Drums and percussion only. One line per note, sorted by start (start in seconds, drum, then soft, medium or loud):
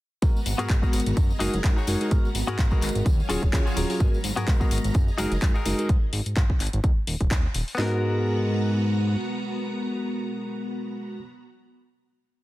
0.22 kick loud
0.22 closed hi-hat medium
0.22 tambourine soft
0.37 tambourine soft
0.46 open hi-hat loud
0.46 tambourine loud
0.59 closed hi-hat medium
0.59 tambourine soft
0.69 kick loud
0.69 clap loud
0.69 closed hi-hat medium
0.69 tambourine soft
0.83 kick medium
0.83 tambourine soft
0.93 open hi-hat loud
0.93 tambourine medium
1.00 closed hi-hat medium
1.06 closed hi-hat medium
1.06 tambourine soft
1.17 kick loud
1.17 closed hi-hat medium
1.17 tambourine medium
1.31 tambourine soft
1.40 open hi-hat loud
1.40 tambourine medium
1.54 closed hi-hat medium
1.54 tambourine soft
1.63 kick loud
1.63 clap loud
1.63 closed hi-hat medium
1.63 tambourine medium
1.78 tambourine soft
1.87 open hi-hat loud
1.87 tambourine loud
2.01 closed hi-hat medium
2.01 tambourine soft
2.11 kick loud
2.11 closed hi-hat medium
2.11 tambourine medium
2.25 tambourine soft
2.35 open hi-hat loud
2.35 tambourine medium
2.48 closed hi-hat medium
2.59 kick loud
2.59 clap loud
2.59 closed hi-hat medium
2.59 tambourine medium
2.71 kick medium
2.71 tambourine soft
2.82 clap soft
2.82 open hi-hat loud
2.82 tambourine medium
2.89 closed hi-hat medium
2.95 closed hi-hat medium
2.95 tambourine soft
3.06 kick loud
3.06 closed hi-hat medium
3.06 tambourine medium
3.20 tambourine soft
3.30 open hi-hat loud
3.30 tambourine medium
3.42 kick medium
3.42 tambourine soft
3.53 kick loud
3.53 clap loud
3.53 closed hi-hat medium
3.53 tambourine medium
3.67 tambourine soft
3.77 open hi-hat loud
3.77 tambourine medium
3.90 open hi-hat medium
3.90 tambourine soft
4.00 kick loud
4.00 closed hi-hat medium
4.00 tambourine medium
4.14 tambourine soft
4.24 open hi-hat loud
4.24 tambourine loud
4.37 closed hi-hat soft
4.37 tambourine soft
4.48 kick loud
4.48 clap loud
4.48 closed hi-hat medium
4.48 tambourine medium
4.61 kick medium
4.61 tambourine soft
4.71 open hi-hat loud
4.71 tambourine loud
4.78 closed hi-hat medium
4.84 closed hi-hat medium
4.84 tambourine soft
4.94 kick loud
4.94 closed hi-hat medium
4.94 tambourine medium
5.08 tambourine soft
5.18 open hi-hat loud
5.18 tambourine loud
5.32 closed hi-hat medium
5.32 tambourine soft
5.42 kick loud
5.42 clap loud
5.42 closed hi-hat medium
5.42 tambourine medium
5.55 tambourine soft
5.66 open hi-hat loud
5.66 tambourine medium
5.78 closed hi-hat soft
5.78 tambourine soft
5.89 kick loud
5.89 closed hi-hat medium
6.13 open hi-hat loud
6.26 closed hi-hat soft
6.36 kick loud
6.36 clap loud
6.36 closed hi-hat medium
6.50 kick medium
6.60 clap soft
6.60 open hi-hat loud
6.67 closed hi-hat medium
6.73 closed hi-hat soft
6.84 kick loud
6.84 closed hi-hat medium
7.07 open hi-hat loud
7.21 kick medium
7.21 closed hi-hat medium
7.31 kick loud
7.31 clap loud
7.31 closed hi-hat medium
7.54 open hi-hat loud
7.68 open hi-hat medium
7.78 snare loud
7.78 clap medium